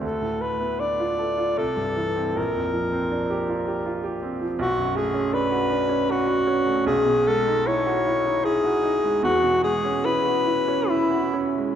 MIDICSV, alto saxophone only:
0, 0, Header, 1, 2, 480
1, 0, Start_track
1, 0, Tempo, 780234
1, 22, Time_signature, 3, 2, 24, 8
1, 1461, Tempo, 742574
1, 3381, Tempo, 762389
1, 4341, Tempo, 795756
1, 6261, Tempo, 851064
1, 6741, Tempo, 914634
1, 7187, End_track
2, 0, Start_track
2, 0, Title_t, "Alto saxophone"
2, 0, Program_c, 0, 65
2, 19, Note_on_c, 0, 69, 61
2, 255, Note_on_c, 0, 71, 68
2, 264, Note_off_c, 0, 69, 0
2, 491, Note_on_c, 0, 74, 67
2, 500, Note_off_c, 0, 71, 0
2, 973, Note_on_c, 0, 69, 71
2, 983, Note_off_c, 0, 74, 0
2, 1461, Note_on_c, 0, 70, 60
2, 1471, Note_off_c, 0, 69, 0
2, 2666, Note_off_c, 0, 70, 0
2, 2902, Note_on_c, 0, 66, 80
2, 3134, Note_on_c, 0, 68, 81
2, 3143, Note_off_c, 0, 66, 0
2, 3375, Note_on_c, 0, 71, 84
2, 3385, Note_off_c, 0, 68, 0
2, 3863, Note_on_c, 0, 66, 81
2, 3872, Note_off_c, 0, 71, 0
2, 4336, Note_off_c, 0, 66, 0
2, 4340, Note_on_c, 0, 68, 86
2, 4584, Note_on_c, 0, 69, 86
2, 4593, Note_off_c, 0, 68, 0
2, 4824, Note_on_c, 0, 73, 85
2, 4833, Note_off_c, 0, 69, 0
2, 5292, Note_on_c, 0, 68, 93
2, 5301, Note_off_c, 0, 73, 0
2, 5765, Note_off_c, 0, 68, 0
2, 5773, Note_on_c, 0, 66, 90
2, 6006, Note_off_c, 0, 66, 0
2, 6010, Note_on_c, 0, 68, 89
2, 6259, Note_on_c, 0, 71, 85
2, 6267, Note_off_c, 0, 68, 0
2, 6734, Note_on_c, 0, 64, 77
2, 6742, Note_off_c, 0, 71, 0
2, 7049, Note_off_c, 0, 64, 0
2, 7187, End_track
0, 0, End_of_file